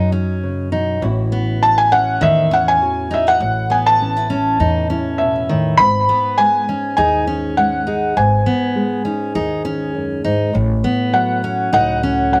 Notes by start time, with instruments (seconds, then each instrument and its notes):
Already playing: upright bass F#2, nylon-string guitar F#2 F#3 C#4 D#4 F#4, steel-string acoustic guitar D#4
0.12 steel-string acoustic guitar C#4, nylon-string guitar D#4
0.43 nylon-string guitar C#3
0.72 nylon-string guitar B2, steel-string acoustic guitar D#4
1.01 upright bass A1, nylon-string guitar A2 E3 C#4 E4 F#4
1.32 steel-string acoustic guitar B3
1.62 nylon-string guitar E3, felt piano A5
1.78 felt piano G#5
1.92 nylon-string guitar C#4, steel-string acoustic guitar C#4, felt piano F#5
2.21 upright bass E2, nylon-string guitar A2, steel-string acoustic guitar D#3, felt piano E5
2.51 steel-string acoustic guitar C#4, nylon-string guitar E4, felt piano F#5
2.68 felt piano G#5
2.82 nylon-string guitar E3 F#4
3.11 nylon-string guitar C#4, steel-string acoustic guitar D#4, felt piano E5
3.27 nylon-string guitar E4, felt piano F#5
3.40 upright bass A1, nylon-string guitar A2
3.70 steel-string acoustic guitar B3, felt piano G#5
3.86 felt piano A5
4.01 nylon-string guitar E3 C#4
4.16 nylon-string guitar E4
4.30 steel-string acoustic guitar C#4, nylon-string guitar C#4
4.60 upright bass E2, nylon-string guitar A2, steel-string acoustic guitar D#4
4.90 steel-string acoustic guitar C#4, nylon-string guitar E4
5.18 nylon-string guitar B2, felt piano E5
5.49 nylon-string guitar A2, steel-string acoustic guitar D#3
5.77 upright bass G#1, nylon-string guitar G#2 B3, felt piano B5
6.09 steel-string acoustic guitar B3
6.38 nylon-string guitar G#3, felt piano G#5
6.69 steel-string acoustic guitar C#4, nylon-string guitar D#4
6.97 upright bass D#2, nylon-string guitar D#3 G#4, steel-string acoustic guitar D#4, felt piano G#5
7.27 steel-string acoustic guitar C#4, nylon-string guitar D#4
7.57 nylon-string guitar G#3, felt piano F#5
7.87 steel-string acoustic guitar D#4, nylon-string guitar G#4
8.16 upright bass G#1, nylon-string guitar G#2 B3, felt piano G#5
8.46 steel-string acoustic guitar B3
8.76 nylon-string guitar G#3
9.05 steel-string acoustic guitar C#4, nylon-string guitar D#4
9.35 upright bass D#2, nylon-string guitar D#3 G#4, steel-string acoustic guitar D#4
9.65 steel-string acoustic guitar C#4, nylon-string guitar D#4
9.95 nylon-string guitar F#2
10.24 nylon-string guitar G#2, steel-string acoustic guitar D#4
10.53 upright bass A1, nylon-string guitar A2 A3
10.84 steel-string acoustic guitar B3
11.13 nylon-string guitar F#3, felt piano F#5
11.43 nylon-string guitar C#4, steel-string acoustic guitar C#4
11.72 upright bass C#2, nylon-string guitar A2 A4, steel-string acoustic guitar D#4, felt piano F#5
12.03 nylon-string guitar C#4, steel-string acoustic guitar C#4
12.32 nylon-string guitar F#3, felt piano F#5